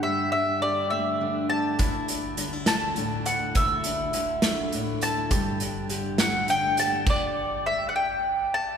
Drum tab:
CC |------|------|------|------|
HH |------|xxxxxx|xxxxxx|xxxxxx|
SD |------|---o--|---o--|---o--|
BD |------|o-----|o-----|o-----|

CC |x-----|
HH |------|
SD |------|
BD |o-----|